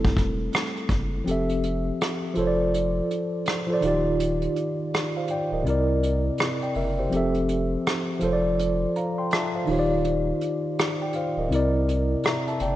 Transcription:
Already playing: sub bass F1, tine electric piano G3 A3 C4 E4 A4
0.05 kick
0.17 sub bass E1, kick, closed hi-hat
0.53 cross-stick, closed hi-hat
0.77 closed hi-hat
0.89 sub bass F#1, kick, closed hi-hat
1.24 sub bass F1, tine electric piano F3 C4 G4, closed hi-hat
1.29 tine electric piano A4 E5
1.49 closed hi-hat
1.63 closed hi-hat
2.01 cross-stick, closed hi-hat
2.34 sub bass F1, tine electric piano F3 F4 A4, closed hi-hat
2.39 tine electric piano C5 C#5
2.47 tine electric piano D5
2.74 closed hi-hat
3.11 closed hi-hat
3.46 cross-stick, closed hi-hat
3.66 tine electric piano F3 F4 A4
3.72 tine electric piano C5 D5
3.80 sub bass D#1, tine electric piano D#3 D#4 F4, closed hi-hat
3.86 tine electric piano G4 D5
4.20 closed hi-hat
4.42 closed hi-hat
4.56 closed hi-hat
4.94 cross-stick, closed hi-hat
5.17 tine electric piano C5 F5
5.28 tine electric piano D5 G5, closed hi-hat
5.52 sub bass D1, tine electric piano A#4 D#5
5.63 sub bass C2, tine electric piano C3 C4 E4, closed hi-hat
5.68 tine electric piano A#4 D5
6.03 closed hi-hat
6.38 cross-stick, closed hi-hat
6.62 tine electric piano D5 G5, closed hi-hat
6.74 sub bass F#1, tine electric piano A#4 E5, open hi-hat
6.99 tine electric piano G4 C5
7.10 sub bass F1, tine electric piano F3 C4 G4, closed hi-hat
7.15 tine electric piano A4 E5
7.34 closed hi-hat
7.49 closed hi-hat
7.86 cross-stick, closed hi-hat
8.19 sub bass F1, tine electric piano F3 F4 A4, closed hi-hat
8.25 tine electric piano C5 C#5
8.33 tine electric piano D5
8.59 closed hi-hat
8.96 tine electric piano F5 A#5, closed hi-hat
9.18 tine electric piano G5 C6
9.31 tine electric piano E5 A5, cross-stick, closed hi-hat
9.55 tine electric piano C5 F5
9.65 sub bass D#1, tine electric piano D#3 D#4 F4, open hi-hat
9.71 tine electric piano G4 C#5
9.79 tine electric piano D5
10.05 closed hi-hat
10.41 closed hi-hat
10.79 cross-stick, closed hi-hat
11.02 tine electric piano D5 G5
11.13 tine electric piano C5 F5, closed hi-hat
11.37 sub bass D1, tine electric piano A#4 D#5
11.49 sub bass C2, tine electric piano C3 C4 E4, closed hi-hat
11.54 tine electric piano A#4 D5
11.89 closed hi-hat
12.24 tine electric piano E5 A#5, cross-stick, closed hi-hat
12.47 tine electric piano E5 A5, closed hi-hat
12.60 sub bass F#1, tine electric piano D5 G5, closed hi-hat

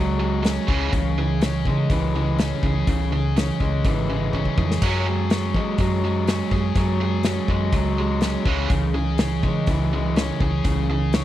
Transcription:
Already playing: fingered electric bass C#2, overdriven electric guitar F#3 G#3 C#4 G#4
0.19 overdriven electric guitar F#3 G#3
0.43 overdriven electric guitar F#3 G#3 C#4, snare, open hi-hat
0.67 fingered electric bass C#2, overdriven electric guitar C#3 E3 G#3, kick
0.92 fingered electric bass C#2, overdriven electric guitar C#3 E3, kick, open hi-hat
1.18 overdriven electric guitar C#3 E3 G#4
1.41 overdriven electric guitar C#3 E3 C#4, snare, open hi-hat
1.65 fingered electric bass C#3, overdriven electric guitar C#3 E3 G#3, kick
1.90 fingered electric bass C#2, overdriven electric guitar C#3 E3, kick, open hi-hat
2.15 overdriven electric guitar C#3 E3 G#3
2.38 overdriven electric guitar C#3 E3 C#4, snare, open hi-hat
2.63 fingered electric bass C#2, overdriven electric guitar C#3 E3 G#4, kick
2.87 fingered electric bass C#2, overdriven electric guitar C#3 E3, kick, open hi-hat
3.12 overdriven electric guitar C#3 E3 G#4
3.36 overdriven electric guitar C#3 E3 C#4, snare, open hi-hat
3.60 fingered electric bass C#2, overdriven electric guitar C#3 E3 G#3, kick
3.84 fingered electric bass G#1, overdriven electric guitar C#3 E3, kick, open hi-hat
4.10 overdriven electric guitar C#3 E3 G#3
4.33 overdriven electric guitar C#3 E3 C#4, kick
4.45 kick
4.58 fingered electric bass F2, overdriven electric guitar C#3 E3 G#4, kick
4.71 snare
4.82 fingered electric bass F#2, overdriven electric guitar F#3 G#3 C#4, kick, open hi-hat, crash
5.06 overdriven electric guitar F#3 G#3 G#4
5.30 overdriven electric guitar F#3 G#3 C#4, snare, open hi-hat
5.54 fingered electric bass F#3, overdriven electric guitar F#3 G#3, kick
5.78 fingered electric bass F#2, overdriven electric guitar F#3 G#3, kick, open hi-hat
6.04 overdriven electric guitar F#3 G#3
6.27 overdriven electric guitar F#3 G#3 C#4, snare, open hi-hat
6.51 fingered electric bass F#2, overdriven electric guitar F#3 G#3 G#4, kick
6.75 fingered electric bass F#2, overdriven electric guitar F#3 G#3, kick, open hi-hat
7.00 overdriven electric guitar F#3 G#3 G#4
7.23 overdriven electric guitar F#3 G#3 C#4, snare, open hi-hat
7.48 fingered electric bass F#2, overdriven electric guitar F#3 G#3, kick
7.72 fingered electric bass C#2, overdriven electric guitar F#3 G#3, kick, open hi-hat
7.97 overdriven electric guitar F#3 G#3
8.21 overdriven electric guitar F#3 G#3 C#4, snare, open hi-hat
8.45 fingered electric bass C#2, overdriven electric guitar C#3 E3 G#3, kick
8.70 fingered electric bass C#2, overdriven electric guitar C#3 E3, kick, open hi-hat
8.94 overdriven electric guitar C#3 E3 G#4
9.18 overdriven electric guitar C#3 E3 C#4, snare, open hi-hat
9.43 fingered electric bass C#3, overdriven electric guitar C#3 E3 G#3, kick
9.67 fingered electric bass C#2, overdriven electric guitar C#3 E3, kick, open hi-hat
9.93 overdriven electric guitar C#3 E3 G#3
10.16 overdriven electric guitar C#3 E3 C#4, snare, open hi-hat
10.40 fingered electric bass C#2, overdriven electric guitar C#3 E3 G#4, kick
10.64 fingered electric bass C#2, overdriven electric guitar C#3 E3, kick, open hi-hat
10.90 overdriven electric guitar C#3 E3 G#4
11.13 overdriven electric guitar C#3 E3 C#4, snare, open hi-hat

